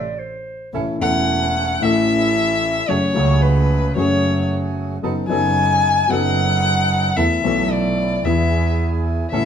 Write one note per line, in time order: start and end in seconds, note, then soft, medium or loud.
0.00 0.20 D5 medium
0.19 0.73 C5 medium
0.73 0.96 A1 soft
0.73 0.96 A1 medium
0.73 0.96 A2 soft
0.73 0.96 E3 soft
0.73 0.96 A3 soft
0.73 0.96 C#4 soft
0.73 0.97 E4 soft
0.73 0.96 A4 soft
0.99 1.77 E1 medium
0.99 1.77 E2 medium
0.99 1.76 E3 medium
0.99 1.77 A3 medium
0.99 1.77 C#4 medium
0.99 1.77 E4 medium
0.99 1.77 A4 medium
0.99 1.78 A4 medium
0.99 1.83 F#5 medium
1.80 2.83 A1 medium
1.80 2.84 A1 medium
1.80 2.83 A2 medium
1.80 2.82 E3 medium
1.80 2.83 A3 medium
1.80 2.83 C#4 medium
1.80 2.84 C#4 soft
1.80 2.83 E4 medium
1.80 2.84 A4 medium
1.80 2.90 E5 medium
1.84 2.85 A4 medium
2.88 3.11 F#1 medium
2.88 3.11 F#2 soft
2.88 3.11 F#3 soft
2.88 3.11 A3 soft
2.88 3.11 C#4 soft
2.88 3.11 F#4 soft
2.88 3.11 G#4 medium
2.88 3.11 G#4 soft
2.88 3.43 C#5 medium
3.13 3.91 C#2 medium
3.13 3.92 C#2 medium
3.13 3.92 C#3 medium
3.13 3.91 F#3 medium
3.13 3.91 A3 medium
3.13 3.92 A3 medium
3.13 3.92 C#4 medium
3.13 3.92 F#4 medium
3.13 3.92 G#4 medium
3.17 3.93 G#4 medium
3.42 3.96 B4 medium
3.95 4.97 F#1 medium
3.95 4.98 F#2 medium
3.95 4.98 F#3 medium
3.95 4.97 A3 medium
3.95 4.98 C#4 medium
3.95 4.97 F#4 medium
3.95 4.97 G#4 medium
3.95 4.99 G#4 medium
3.95 4.46 C#5 medium
5.03 5.25 F#1 medium
5.03 5.25 F#2 soft
5.03 5.25 F#3 medium
5.03 5.25 B3 soft
5.03 5.25 D#4 soft
5.03 5.25 A4 soft
5.03 5.25 A4 medium
5.28 6.06 F#1 medium
5.28 6.06 F#2 medium
5.28 6.06 F#3 medium
5.28 6.05 B3 medium
5.28 6.06 D#4 medium
5.28 6.06 A4 medium
5.28 6.11 G#5 medium
6.09 7.11 F#1 medium
6.09 7.11 F#2 medium
6.09 7.11 F#3 medium
6.09 7.11 B3 medium
6.09 7.12 D#4 medium
6.09 7.12 A4 medium
6.09 7.13 A4 medium
6.09 7.18 F#5 loud
7.16 7.39 E2 soft
7.16 7.39 E2 medium
7.16 7.39 E3 soft
7.16 7.39 A3 soft
7.16 7.39 B3 soft
7.16 7.39 E4 soft
7.16 7.39 A4 soft
7.16 7.40 A4 medium
7.16 7.73 E5 medium
7.42 8.20 B1 medium
7.42 8.20 B2 medium
7.42 8.19 E3 medium
7.42 8.20 A3 medium
7.42 8.20 B3 medium
7.42 8.21 B3 soft
7.42 8.20 E4 medium
7.42 8.20 A4 medium
7.46 8.21 A4 medium
7.71 8.26 D5 medium
8.23 9.26 E2 medium
8.23 9.27 E2 medium
8.23 8.24 E3 medium
8.23 9.27 E3 medium
8.23 9.27 G#3 medium
8.23 9.26 B3 medium
8.23 9.27 B3 medium
8.23 9.27 E4 medium
8.23 9.27 G#4 medium
8.23 9.28 G#4 medium
8.23 8.78 E5 medium
9.31 9.45 A1 medium
9.31 9.45 A1 soft
9.31 9.45 A2 soft
9.31 9.45 C#3 soft
9.31 9.45 A3 soft
9.31 9.45 B3 soft
9.31 9.45 C#4 soft
9.31 9.45 E4 soft
9.31 9.45 A4 medium
9.31 9.45 E5 medium